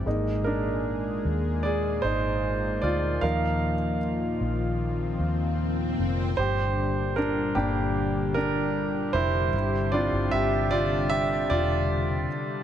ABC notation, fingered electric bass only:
X:1
M:4/4
L:1/16
Q:1/4=76
K:Gphr
V:1 name="Fingered electric bass" clef=bass
A,,,6 E,,4 A,,,4 D,,2 | E,,6 B,,,4 E,,4 F,,,2 | G,,,6 G,,,8 F,,,2 | G,,,3 G,,, G,,,6 =E,,,4 z2 |]